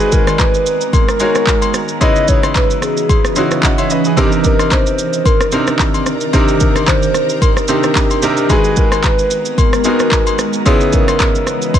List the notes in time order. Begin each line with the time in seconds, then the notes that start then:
Already playing: G#3 B3 D#4 F#4 G#4 B4 A#5
0.00 shaker
0.12 A#4, kick, shaker
0.27 cross-stick, high agogo, shaker
0.39 B4, kick, clap, low woodblock, shaker
0.54 shaker
0.66 shaker
0.81 shaker
0.93 A#4, kick, high agogo, shaker
1.08 cross-stick, shaker
1.20 G#3 D#4 F#4 A#4 C#5, high agogo, shaker
1.35 cross-stick, shaker
1.47 kick, clap, low woodblock, shaker
1.62 high agogo, shaker
1.74 cross-stick, shaker
1.88 shaker
2.01 C#3 E3 C#4 D#4 E4 B4 D#5, kick, high agogo, shaker
2.16 shaker
2.28 C#5, kick, shaker
2.43 cross-stick, high agogo, shaker
2.55 B4, kick, clap, low woodblock, shaker
2.70 shaker
2.82 G#4, cross-stick, shaker
2.97 shaker
3.09 kick, high agogo, shaker
3.25 cross-stick, shaker
3.36 C#3 C#4 D#4 E4 F#4, high agogo, shaker
3.51 cross-stick, shaker
3.63 D#5 F#5, kick, clap, low woodblock, shaker
3.78 C#5 E5, high agogo, shaker
3.90 B4 D#5, shaker
4.05 G#4 B4, shaker
4.16 C3 D#3 C4 D4 D#4 G4 A#4 D5, kick, high agogo, shaker
4.32 shaker
4.44 A#4, kick, shaker
4.59 cross-stick, high agogo, shaker
4.71 C5, kick, clap, low woodblock, shaker
4.86 shaker
4.98 shaker
5.13 shaker
5.25 A#4, kick, high agogo, shaker
5.41 cross-stick, shaker
5.52 C3 C4 D4 D#4 A#4, high agogo, shaker
5.67 cross-stick, shaker
5.79 kick, clap, low woodblock, shaker
5.94 high agogo, shaker
6.06 cross-stick, shaker
6.21 shaker
6.33 C3 C4 D4 D#4 G4 A#4, kick, high agogo, shaker
6.48 shaker
6.60 A#4, kick, shaker
6.76 cross-stick, high agogo, shaker
6.87 C5, kick, clap, low woodblock, shaker
7.03 shaker
7.14 cross-stick, shaker
7.29 shaker
7.42 A#4, kick, high agogo, shaker
7.57 cross-stick, shaker
7.68 C3 C4 D4 D#4 G4, high agogo, shaker
7.83 cross-stick, shaker
7.95 kick, clap, low woodblock, shaker
8.11 high agogo, shaker
8.22 C3 C4 D4 D#4 A#4, shaker
8.37 shaker
8.49 G#3 B3 D#4 F#4 G#4 B4 A#5, kick, high agogo, shaker
8.64 shaker
8.76 A#4, kick, shaker
8.92 cross-stick, high agogo, shaker
9.03 kick, clap, low woodblock, shaker
9.19 shaker
9.31 shaker
9.45 shaker
9.58 A#4, kick, high agogo, shaker
9.73 cross-stick, shaker
9.84 G#3 B3 D#4 F#4 A#4, high agogo, shaker
10.00 cross-stick, shaker
10.12 kick, clap, low woodblock, shaker
10.27 high agogo, shaker
10.39 cross-stick, shaker
10.53 shaker
10.66 C#3 E3 B3 C#4 D#4 E4 G#4 D#5, kick, high agogo, shaker
10.81 shaker
10.93 A#4, kick, shaker
11.08 cross-stick, high agogo, shaker
11.20 kick, clap, low woodblock, shaker
11.35 shaker
11.47 B4, cross-stick, shaker
11.62 shaker
11.74 kick, high agogo, shaker